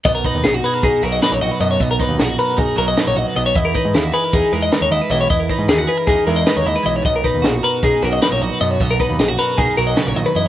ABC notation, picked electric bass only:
X:1
M:9/8
L:1/16
Q:3/8=103
K:B
V:1 name="Picked electric bass" clef=bass
B,,,2 z D,, A,,,2 z2 B,,, z B,,,2 z A,,, A,,, z F,,2 | B,,,2 z D,, A,,,2 z2 B,,, z B,,,2 z A,,, A,,, z B,,,2 | E,,2 z G,, D,,2 z2 E,, z E,,2 z D,, D,, z B,,,2 | E,,2 z G,, D,,2 z2 E,, z E,,2 z D,, D,, z B,,,2 |
B,,,2 z D,, A,,,2 z2 B,,, z B,,,2 z A,,, A,,, z F,,2 | B,,,2 z D,, A,,,2 z2 B,,, z B,,,2 z A,,, A,,, z F,,2 |]